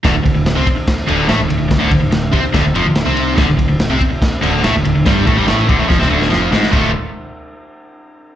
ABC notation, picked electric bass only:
X:1
M:4/4
L:1/16
Q:1/4=144
K:Dm
V:1 name="Picked electric bass" clef=bass
D,,, D,,, D,,, D,,,2 C,, z4 D,,,2 A,,, D,,, D,,, D,,, | D,,, D,,, D,,, D,,, D,,,2 C,, z D,,, D,,, F,,, D,,,2 C,,3 | D,,, D,,, D,,, D,,,2 C,, z4 D,,,2 A,,, D,,, D,,, D,,, | G,,,2 A,,, G,,, A,,,2 D,,, A,,, F,,, C,, D,,,2 F,,,2 ^G,,,2 |
D,,,2 z12 z2 |]